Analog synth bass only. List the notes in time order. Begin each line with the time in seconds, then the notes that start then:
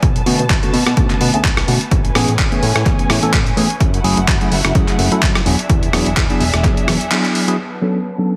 0.03 B1
0.26 B2
0.39 B2
0.50 B1
0.73 B2
0.86 B2
0.97 B1
1.10 B2
1.21 B2
1.34 B1
1.44 B1
1.68 B2
1.91 A1
2.15 A2
2.28 A2
2.39 A1
2.62 A2
2.75 A2
2.86 A1
2.99 A2
3.10 A2
3.23 A1
3.33 A1
3.57 A2
3.80 F#2
4.04 F#1
4.17 F#1
4.28 F#2
4.51 F#1
4.64 F#1
4.75 F#2
4.88 F#1
4.99 F#1
5.12 F#2
5.22 F#2
5.46 E1
5.70 E2
5.93 E1
6.06 E1
6.17 E2
6.40 E1
6.53 E1
6.64 E2
6.77 E1
6.87 E1
7.01 E2